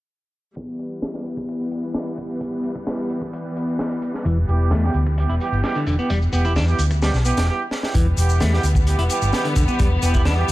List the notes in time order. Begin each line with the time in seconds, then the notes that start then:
0.56 E3 G3 B3, kick, closed hi-hat
0.79 closed hi-hat, shaker
1.02 snare, closed hi-hat
1.14 snare
1.25 closed hi-hat, shaker
1.37 kick
1.48 closed hi-hat, shaker
1.60 closed hi-hat, shaker
1.71 closed hi-hat, shaker
1.84 shaker
1.94 snare, closed hi-hat
2.07 closed hi-hat
2.18 kick, closed hi-hat, shaker
2.30 shaker
2.41 kick, closed hi-hat, shaker
2.64 closed hi-hat, shaker
2.76 kick, shaker
2.87 snare, closed hi-hat, shaker
2.99 shaker
3.10 closed hi-hat, shaker
3.22 kick, shaker
3.33 closed hi-hat, shaker
3.45 shaker
3.57 closed hi-hat, shaker
3.69 shaker
3.79 snare, closed hi-hat, shaker
3.91 closed hi-hat, shaker
4.02 closed hi-hat, shaker
4.14 snare, shaker
4.25 E1 E3, kick, closed hi-hat, shaker
4.48 E1 B3 E4 G4, closed hi-hat, shaker
4.60 shaker
4.71 E2 A3, snare, closed hi-hat, shaker
4.83 B3 E4 G4, snare, shaker
4.94 D2, closed hi-hat, shaker
5.06 kick, shaker
5.18 B3 E4 G4, closed hi-hat, shaker
5.29 E1 E4, closed hi-hat, shaker
5.41 B3 E4 G4, closed hi-hat, shaker
5.52 G1, shaker
5.64 B3 E4 G4, snare, closed hi-hat, shaker
5.75 D3, closed hi-hat, shaker
5.87 E1 D3, kick, closed hi-hat, shaker
5.99 B3 E4 G4, shaker
6.10 E1 G3, kick, closed hi-hat, shaker
6.22 shaker
6.33 E1 B3 E4 G4, closed hi-hat, shaker
6.45 E4, kick, shaker
6.56 E2 D4, snare, closed hi-hat, shaker
6.68 B3 E4 G4, shaker
6.79 D2, closed hi-hat, shaker
6.91 kick, shaker
7.02 G3 B3 E4 G4, snare, closed hi-hat, shaker
7.14 B1, snare, shaker
7.25 B3 E4 G4, closed hi-hat, shaker
7.37 E1, snare, closed hi-hat, shaker
7.48 B3 E4 G4
7.71 snare
7.83 B3 E4 G4, snare
7.94 E1 E3 G3 B3, kick, closed hi-hat, shaker
8.17 E1 B3 E4 G4, closed hi-hat, shaker
8.29 shaker
8.40 E2 A3, snare, closed hi-hat, shaker
8.53 B3 E4 G4, snare
8.64 D2, closed hi-hat, shaker
8.75 kick, shaker
8.87 B3 E4 G4, closed hi-hat, shaker
8.99 E1 E4, closed hi-hat
9.10 B3 E4 G4, closed hi-hat, shaker
9.22 G1, shaker
9.33 B3 E4 G4, snare, closed hi-hat, shaker
9.45 D3, closed hi-hat
9.56 E1 D3, kick, closed hi-hat, shaker
9.68 B3 E4 G4, shaker
9.79 E1 G3, kick, closed hi-hat, shaker
10.02 E1 B3 E4 G4, closed hi-hat, shaker
10.14 E4, kick, shaker
10.25 E2 D4, snare, closed hi-hat, shaker
10.37 B3 E4 G4
10.48 D2, shaker